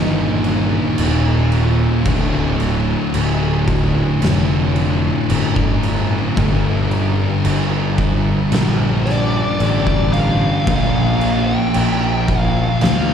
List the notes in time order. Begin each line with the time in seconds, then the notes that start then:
Already playing: G1 D#2 A#2 D#3
0.44 crash
0.98 D#1, crash
1.52 crash
2.05 D1 D2 A2 D3, kick, crash
2.60 crash
3.14 D1, crash
3.68 kick, crash
4.21 F1 D2 A2 D3, snare, crash
4.76 crash
5.30 G1, crash
5.56 kick
5.83 crash
6.36 G1 G2 D3 G3, kick, crash
6.91 crash
7.44 G1, crash
7.98 kick, crash
8.52 A#1 G2 D3 G3, snare, crash
9.06 D5, snare, crash
9.60 A1, crash
9.87 kick
10.13 F5, crash
10.66 A#1 A#2 F3 A#3, kick, crash
11.21 crash
11.47 G5
11.74 A#1, crash
12.28 kick, crash
12.41 F5
12.81 D2 A#2 F3 A#3 F5, snare, crash